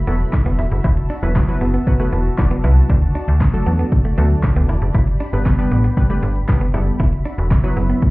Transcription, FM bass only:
0.07 0.25 E1 medium
0.46 0.55 E1 medium
0.59 0.68 E1 medium
0.72 0.80 F#1 medium
0.84 1.02 E1 loud
1.23 1.40 E1 loud
1.61 1.79 F#1 medium
2.12 2.30 E1 loud
2.38 2.56 E1 loud
2.64 2.82 C2 loud
2.89 3.07 D2 loud
3.28 3.46 D2 loud
3.66 3.84 E2 medium
4.18 4.35 D2 loud
4.56 4.65 D2 medium
4.69 4.78 E1 loud
4.82 4.91 F#1 medium
4.94 5.12 G1 loud
5.33 5.51 G1 medium
5.71 5.89 A1 medium
6.23 6.40 G1 medium
6.49 6.66 G1 loud
6.74 6.92 F#1 loud
7.00 7.17 E1 loud
7.38 7.56 E1 loud
7.77 7.94 F#1 loud

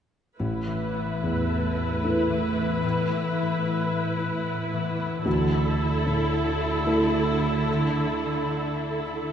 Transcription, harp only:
0.39 2.83 A2 soft
0.67 2.28 E3 soft
0.94 2.01 B3 soft
1.22 1.75 E4 soft
1.49 5.39 A4 soft
1.76 3.65 E4 soft
2.02 2.55 B3 soft
2.30 3.10 E3 soft
2.56 3.37 B3 soft
2.84 5.29 A2 soft
3.11 4.72 E3 soft
3.38 4.45 B3 soft
3.66 4.18 E4 soft
4.19 6.06 E4 soft
4.47 4.99 B3 soft
4.73 5.30 E3 soft
5.00 5.30 B3 soft
5.27 7.66 D3 soft
5.54 7.12 D4 soft
5.81 6.86 A3 soft
6.07 6.59 E4 soft
6.61 8.50 E4 soft
6.87 7.39 A3 soft
7.14 7.95 D4 soft
7.41 8.22 A3 soft
7.67 9.32 D3 soft
7.96 9.32 D4 soft
8.23 9.32 A3 soft
8.51 9.05 E4 soft
9.07 9.32 E4 soft

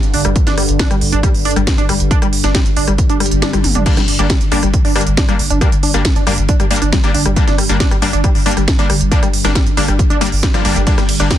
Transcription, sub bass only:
0.03 0.13 G1 medium
0.14 0.24 G1 loud
0.25 0.35 G1 medium
0.47 0.57 G1 medium
0.69 0.79 G1 medium
0.91 1.01 G1 medium
1.01 1.12 G1 loud
1.13 1.23 G1 medium
1.35 1.45 G1 medium
1.56 1.67 G1 medium
1.78 1.88 G1 medium
1.89 1.99 G1 loud
2.00 2.11 G1 medium
2.22 2.33 G1 medium
2.44 2.54 G1 medium
2.66 2.76 G1 medium
2.77 2.87 G1 loud
2.88 2.98 G1 medium
3.10 3.20 G1 medium
3.32 3.42 G1 medium
3.53 3.64 G1 medium
3.64 3.75 G1 loud
3.75 3.86 G1 medium
3.97 4.08 G1 medium
4.19 4.30 G1 medium
4.41 4.51 G1 medium
4.52 4.62 G1 loud
4.63 4.73 G1 medium
4.85 4.95 G1 medium
5.07 5.17 G1 medium
5.29 5.39 G1 medium
5.39 5.50 G1 loud
5.50 5.61 G1 medium
5.72 5.83 G1 medium
5.94 6.05 G1 medium
6.16 6.26 G1 medium
6.27 6.37 G1 loud
6.38 6.49 G1 medium
6.60 6.70 G1 medium
6.82 6.92 G1 medium
7.04 7.14 G1 medium
7.14 7.25 G1 loud
7.25 7.36 G1 medium
7.47 7.58 G1 medium
7.69 7.80 G1 medium
7.91 8.01 G1 medium
8.02 8.13 G1 loud
8.13 8.24 G1 medium
8.35 8.46 G1 medium
8.57 8.68 G1 medium
8.79 8.89 G1 medium
8.90 9.00 G1 loud
9.01 9.11 G1 medium
9.23 9.33 G1 medium
9.45 9.55 G1 medium
9.67 9.77 G1 medium
9.77 9.88 G1 loud
9.88 9.99 G1 medium
10.10 10.21 G1 medium
10.32 10.43 G1 medium
10.54 10.64 G1 medium
10.65 10.75 G1 loud
10.76 10.87 G1 medium
10.98 11.08 G1 medium
11.20 11.30 G1 medium

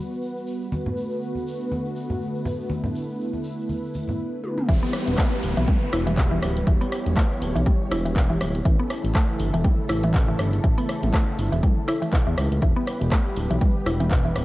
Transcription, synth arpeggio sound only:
4.69 4.81 E3 loud
4.83 4.93 B3 medium
5.18 5.26 A3 loud
5.57 5.67 E3 medium
5.68 5.76 G3 medium
5.93 6.06 E4 medium
6.07 6.17 E3 medium
6.17 6.30 B2 medium
6.31 6.41 E3 medium
6.67 6.80 E3 loud
6.81 6.91 B3 medium
7.16 7.24 A3 loud
7.55 7.65 E3 medium
7.66 7.74 G3 medium
7.91 8.04 E4 medium
8.05 8.15 E3 medium
8.16 8.29 B2 medium
8.30 8.40 E3 medium
8.65 8.78 E3 loud
8.80 8.89 B3 medium
9.15 9.23 A3 loud
9.54 9.64 E3 medium
9.65 9.72 G3 medium
9.89 10.02 E4 medium
10.04 10.14 E3 medium
10.14 10.27 B2 medium
10.28 10.38 E3 medium
10.64 10.76 E3 loud
10.78 10.88 B3 medium
11.13 11.21 A3 loud
11.52 11.62 E3 medium
11.63 11.71 G3 medium
11.88 12.00 E4 medium
12.02 12.12 E3 medium
12.13 12.25 B2 medium
12.27 12.36 E3 medium
12.62 12.75 E3 loud
12.76 12.86 B3 medium
13.12 13.19 A3 loud
13.51 13.60 E3 medium
13.61 13.69 G3 medium
13.86 13.99 E4 medium
14.00 14.10 E3 medium
14.11 14.24 B2 medium
14.25 14.35 E3 medium

